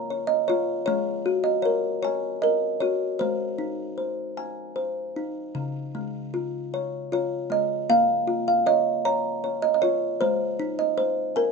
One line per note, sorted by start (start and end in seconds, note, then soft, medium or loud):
0.00 0.48 F4 medium
0.00 0.88 A#5 medium
0.10 0.47 C#5 medium
0.27 0.36 D#5 medium
0.48 0.88 F4 medium
0.48 0.85 C#5 medium
0.86 2.43 G#3 medium
0.86 1.46 C#5 medium
1.26 2.81 F#4 medium
1.44 1.64 D#5 medium
1.62 2.42 A#4 medium
1.62 1.80 C#5 medium
2.03 2.20 C#5 medium
2.03 3.21 G#5 medium
2.42 3.21 A#4 medium
2.42 2.82 D#5 medium
2.80 3.20 F#4 medium
2.80 2.98 C#5 medium
3.19 4.77 G#3 medium
3.19 3.96 C5 medium
3.58 5.15 D#4 medium
3.98 4.75 C5 medium
4.37 5.55 G#5 medium
4.76 5.55 C5 medium
5.16 5.55 D#4 medium
5.55 7.12 C#3 medium
5.95 7.49 G#3 medium
6.34 7.11 F4 medium
6.74 7.12 C#5 medium
7.12 7.90 F4 medium
7.12 7.52 C#5 medium
7.50 7.89 G#3 medium
7.50 7.91 D#5 medium
7.89 9.44 A#3 medium
7.89 8.47 F5 loud
8.28 9.82 F4 medium
8.48 8.67 F5 medium
8.66 9.04 C#5 medium
8.66 9.06 D#5 medium
9.05 9.43 C#5 medium
9.05 10.21 A#5 medium
9.44 9.81 C#5 medium
9.62 9.73 D#5 medium
9.74 9.82 D#5 medium
9.82 10.21 F4 medium
9.82 9.99 C#5 medium
10.21 11.52 G#3 medium
10.21 10.80 C5 medium
10.60 11.52 D#4 medium
10.79 10.97 D#5 medium
10.98 11.37 C5 medium
11.36 11.52 A#4 medium
11.36 11.52 G#5 medium